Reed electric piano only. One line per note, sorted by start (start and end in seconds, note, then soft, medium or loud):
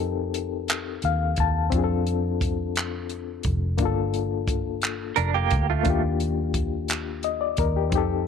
0.00 1.66 C4 medium
0.00 1.67 D#4 medium
0.00 1.69 G4 medium
0.00 1.73 A4 medium
1.05 1.36 F5 medium
1.40 1.71 A5 medium
1.70 3.74 C4 medium
1.70 3.75 D4 medium
1.75 3.76 F4 medium
1.75 1.81 G#4 medium
1.84 3.80 A4 medium
3.78 5.81 A#3 medium
3.78 5.82 D4 medium
3.82 5.83 F4 medium
3.82 5.85 A4 medium
5.83 7.87 A#3 medium
5.83 7.88 D4 medium
5.88 7.89 F4 medium
5.88 7.23 G4 medium
7.24 7.40 D#5 medium
7.41 7.57 D5 medium
7.59 7.75 A#4 medium
7.77 7.94 G4 medium
7.90 8.27 C4 medium
7.90 8.27 D#4 medium
7.95 8.27 G4 medium
7.95 8.27 A4 medium